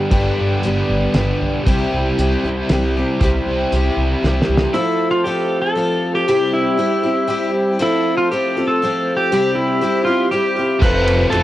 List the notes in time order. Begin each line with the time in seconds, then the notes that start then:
Already playing: G3 B3 D4 G4
0.11 G1 G2 D3 G3 B3 D4 G4, kick, closed hi-hat
0.38 G1
0.63 G1 G3 B3 D4 G4, closed hi-hat
0.89 G1
1.14 G1 G3 B3 D4, snare, closed hi-hat
1.18 G4
1.40 B1
1.67 C2 C3 G3 C4 E4 G4, kick, closed hi-hat
1.92 C2
2.18 C2 G3 C4 E4 G4, closed hi-hat
2.43 C2 C4 E4 G4
2.69 C2 G3 C4 E4, snare, closed hi-hat
2.74 G4
2.97 C4 E4 G4
3.21 C2 C3 G3 C4 E4 G4, kick, closed hi-hat
3.46 C2
3.72 C2 G3 C4 E4, closed hi-hat
3.76 G4
3.96 C2
4.23 C2 G3 C4 E4 G4, snare
4.42 B3 C4, snare
4.48 C2 D4 E4
4.54 F4 G4, snare
4.61 A4 B4
4.65 C5 D5
4.70 F3 A3 C4 E4 A4 E5
4.75 A4
5.11 F4
5.24 F3 C4 F4 G4 A4
5.62 A4
5.75 F3 C4 F4 A4
6.15 G4
6.27 C3 G3 C4 E4 G4
6.54 E4
6.78 G3 C4 E4 G4
7.03 C4 E4 G4
7.27 G3 C4 E4 G4
7.79 F3 A3 C4 E4 A4
8.17 F4
8.32 F3 C4 F4 G4 A4
8.57 C4 F4 A4
8.68 A4
8.82 F3 C4 F4 A4
9.17 G4
9.31 C3 G3 C4 E4 G4
9.55 E4
9.81 G3 C4 E4 G4
10.05 C4 E4 F4 G4
10.31 G3 C4 E4 G4
10.56 C4 E4 G4
10.80 F1 F2 C3 F3 A3 C4 F4 A4 B4, kick, crash
10.84 C4 A4
11.06 F3 A3 C4 F4, ride
11.30 F1 F3 A3 C4 F4 A4 C5, ride
11.34 A4